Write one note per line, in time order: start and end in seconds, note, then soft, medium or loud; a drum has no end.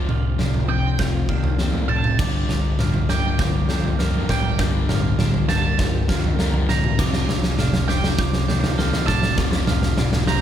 0.00 2.16 D3 medium
0.00 2.16 A3 medium
0.00 2.16 C4 medium
0.00 0.39 D4 medium
0.00 4.56 F4 medium
0.00 0.70 A4 medium
0.08 0.32 F1 medium
0.08 0.36 F2 medium
0.08 0.36 C3 medium
0.08 1.00 F3 medium
0.08 0.69 F6 medium
0.08 floor tom medium
0.08 mid tom medium
0.39 0.62 F1 medium
0.39 0.66 F2 medium
0.39 0.66 C3 medium
0.39 1.29 D4 medium
0.39 snare medium
0.39 mid tom medium
0.54 floor tom medium
0.69 0.93 F1 medium
0.69 0.96 F2 medium
0.69 0.97 C3 medium
0.69 2.20 C4 medium
0.69 0.97 G5 loud
0.69 1.29 G6 medium
0.98 1.22 F1 medium
0.98 1.26 F2 medium
0.98 1.26 C3 medium
0.98 2.22 F3 medium
0.98 kick medium
0.98 snare medium
0.98 floor tom medium
1.29 1.52 D#2 medium
1.29 1.56 F2 medium
1.29 1.57 C3 medium
1.29 1.89 D4 medium
1.29 1.90 F6 medium
1.29 kick medium
1.44 floor tom medium
1.59 1.83 D#2 medium
1.59 1.88 F2 medium
1.59 1.88 C3 medium
1.59 1.88 F3 medium
1.59 2.20 A4 medium
1.59 snare medium
1.74 floor tom medium
1.89 2.19 F1 medium
1.89 2.16 F2 medium
1.89 2.17 C3 medium
1.89 2.79 D4 medium
1.89 2.17 A5 medium
1.89 2.19 G6 medium
1.89 mid tom medium
2.04 mid tom medium
2.19 2.42 G1 medium
2.19 2.48 G2 medium
2.19 3.70 G2 medium
2.19 2.48 D3 medium
2.19 10.41 D3 medium
2.19 6.95 G3 medium
2.19 2.48 G3 medium
2.19 6.95 A#3 medium
2.19 2.80 D6 medium
2.19 kick loud
2.19 snare medium
2.19 floor tom medium
2.19 crash medium
2.49 2.73 G1 medium
2.49 2.76 G2 medium
2.49 2.77 D3 medium
2.49 3.39 F3 medium
2.49 snare medium
2.49 floor tom medium
2.79 3.03 G1 medium
2.79 3.06 G2 medium
2.79 3.07 D3 medium
2.79 3.69 D4 medium
2.79 3.10 F6 medium
2.79 snare medium
2.79 mid tom medium
2.94 floor tom medium
3.09 3.33 G1 medium
3.09 3.37 G2 medium
3.09 3.37 D3 medium
3.09 4.60 A#3 medium
3.09 3.38 G5 loud
3.09 3.38 D6 medium
3.09 snare medium
3.39 3.63 G1 medium
3.39 3.67 G2 medium
3.39 3.67 D3 medium
3.39 4.90 F3 medium
3.39 3.70 D6 medium
3.39 kick medium
3.39 snare medium
3.39 floor tom medium
3.69 3.93 F2 medium
3.69 3.97 G2 medium
3.69 3.97 D3 medium
3.69 4.30 D4 medium
3.69 4.00 G6 medium
3.69 snare medium
3.84 floor tom medium
3.99 4.23 F2 medium
3.99 4.28 G2 medium
3.99 4.28 D3 medium
3.99 4.28 G3 medium
3.99 5.50 A#4 medium
3.99 4.29 F6 medium
3.99 snare medium
4.14 floor tom medium
4.29 4.52 G1 medium
4.29 4.57 G2 medium
4.29 4.57 D3 medium
4.29 5.19 D4 medium
4.29 4.58 G5 medium
4.29 4.89 D6 medium
4.29 kick medium
4.29 snare medium
4.29 mid tom medium
4.59 4.82 G1 medium
4.59 4.88 G2 medium
4.59 6.10 G2 medium
4.59 4.88 D3 loud
4.59 4.88 G3 loud
4.59 6.97 G4 medium
4.59 kick loud
4.59 snare medium
4.59 floor tom medium
4.89 5.13 G1 medium
4.89 5.17 G2 medium
4.89 5.17 D3 medium
4.89 5.79 F3 medium
4.89 5.50 F6 medium
4.89 snare medium
4.89 floor tom medium
4.89 mid tom medium
5.19 5.43 G1 medium
5.19 5.46 G2 medium
5.19 5.47 D3 medium
5.19 6.09 D4 medium
5.19 snare medium
5.19 mid tom medium
5.34 floor tom medium
5.49 5.73 G1 medium
5.49 5.76 G2 medium
5.49 5.77 D3 medium
5.49 6.99 A#3 medium
5.49 5.77 A5 loud
5.49 6.09 G6 medium
5.49 snare loud
5.79 6.02 G1 medium
5.79 6.06 G2 medium
5.79 6.06 D3 medium
5.79 6.99 F3 medium
5.79 kick loud
5.79 snare medium
5.79 floor tom medium
6.08 6.32 F2 medium
6.08 6.36 G2 medium
6.08 6.36 D3 medium
6.08 6.69 D4 medium
6.08 6.69 F6 medium
6.08 kick medium
6.08 snare medium
6.24 floor tom medium
6.38 6.62 F2 medium
6.38 6.67 G2 medium
6.38 6.67 D3 loud
6.38 6.68 G3 medium
6.38 6.99 A#4 medium
6.38 snare medium
6.54 floor tom medium
6.68 6.93 E1 medium
6.68 6.96 G2 medium
6.68 6.96 D3 medium
6.68 7.59 D4 medium
6.68 6.97 A#5 medium
6.68 6.99 G6 medium
6.68 snare medium
6.68 mid tom medium
6.84 mid tom medium
6.98 7.22 F1 medium
6.98 7.26 F2 medium
6.98 7.27 C3 loud
6.98 7.27 F3 loud
6.98 7.29 F3 medium
6.98 10.41 A3 medium
6.98 10.41 C4 medium
6.98 10.41 F4 medium
6.98 7.59 D6 medium
6.98 kick loud
6.98 snare medium
6.98 floor tom medium
6.98 crash medium
7.14 snare loud
7.27 7.52 F1 medium
7.27 7.55 F2 medium
7.27 7.56 C3 medium
7.27 8.19 F3 medium
7.27 snare loud
7.27 floor tom medium
7.43 snare medium
7.59 7.82 F1 loud
7.59 7.86 F2 medium
7.59 7.86 C3 medium
7.59 8.48 D4 medium
7.59 7.89 F6 medium
7.59 snare loud
7.59 mid tom medium
7.74 snare loud
7.74 floor tom medium
7.88 8.12 F1 medium
7.88 8.16 F2 medium
7.88 8.16 C3 medium
7.88 9.39 C4 medium
7.88 8.16 G5 loud
7.88 8.17 D6 medium
7.88 snare loud
8.04 snare loud
8.18 8.42 F1 medium
8.18 8.46 F2 medium
8.18 8.46 C3 medium
8.18 9.37 F3 medium
8.18 8.49 D6 medium
8.18 kick loud
8.18 snare medium
8.18 floor tom medium
8.33 snare medium
8.48 8.72 D#2 loud
8.48 8.76 F2 medium
8.48 8.76 C3 medium
8.48 9.07 D4 medium
8.48 8.79 G6 medium
8.48 snare medium
8.64 snare loud
8.64 floor tom medium
8.78 9.02 D#2 medium
8.78 9.07 F2 medium
8.78 9.07 C3 medium
8.78 9.07 F3 loud
8.78 10.28 A4 medium
8.78 9.08 F6 loud
8.78 snare loud
8.94 snare medium
8.94 floor tom medium
9.07 9.31 F1 medium
9.07 9.35 F2 medium
9.07 9.36 C3 medium
9.07 9.97 D4 medium
9.07 9.36 A5 loud
9.07 9.68 D6 medium
9.07 kick medium
9.07 snare loud
9.07 mid tom medium
9.23 snare loud
9.37 9.61 F1 loud
9.37 9.66 F2 medium
9.37 9.66 C3 medium
9.37 9.67 F3 medium
9.37 9.67 F3 loud
9.37 kick loud
9.37 snare loud
9.37 floor tom medium
9.52 snare loud
9.67 9.92 F1 medium
9.67 9.95 F2 medium
9.67 9.95 C3 medium
9.67 10.41 F3 medium
9.67 10.28 F6 medium
9.67 snare loud
9.67 floor tom medium
9.67 mid tom medium
9.83 snare loud
9.98 10.21 F1 medium
9.98 10.25 F2 medium
9.98 10.25 C3 loud
9.98 10.41 D4 medium
9.98 snare loud
9.98 mid tom medium
10.13 snare loud
10.13 floor tom medium
10.27 10.41 F1 medium
10.27 10.41 F2 medium
10.27 10.41 C3 medium
10.27 10.41 C4 medium
10.27 10.41 A#5 loud
10.27 10.41 G6 medium
10.27 snare loud